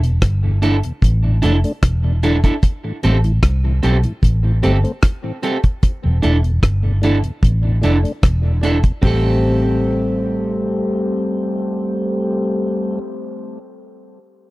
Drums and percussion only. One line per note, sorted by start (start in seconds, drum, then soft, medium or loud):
0.03 closed hi-hat medium
0.22 kick loud
0.22 cross-stick loud
0.22 closed hi-hat medium
0.63 closed hi-hat medium
0.83 closed hi-hat medium
1.02 kick medium
1.02 closed hi-hat medium
1.42 closed hi-hat medium
1.64 closed hi-hat medium
1.83 kick loud
1.83 cross-stick loud
1.83 closed hi-hat loud
2.23 closed hi-hat medium
2.44 kick medium
2.44 closed hi-hat soft
2.63 kick loud
2.63 closed hi-hat medium
3.03 closed hi-hat medium
3.24 closed hi-hat soft
3.43 kick loud
3.43 cross-stick loud
3.43 closed hi-hat loud
3.83 closed hi-hat medium
4.03 closed hi-hat medium
4.23 kick loud
4.23 closed hi-hat medium
4.63 closed hi-hat medium
4.85 closed hi-hat soft
5.03 kick loud
5.03 cross-stick loud
5.03 closed hi-hat medium
5.43 closed hi-hat medium
5.64 kick medium
5.64 closed hi-hat soft
5.83 kick loud
5.83 closed hi-hat medium
6.23 closed hi-hat medium
6.44 closed hi-hat soft
6.63 kick loud
6.63 cross-stick loud
6.63 closed hi-hat medium
7.03 closed hi-hat medium
7.24 closed hi-hat medium
7.43 kick loud
7.43 closed hi-hat medium
7.83 closed hi-hat medium
8.05 closed hi-hat soft
8.23 kick loud
8.23 cross-stick loud
8.23 closed hi-hat medium
8.63 closed hi-hat medium
8.83 kick medium
8.83 closed hi-hat soft
9.03 kick loud
9.03 floor tom medium
9.03 open hi-hat medium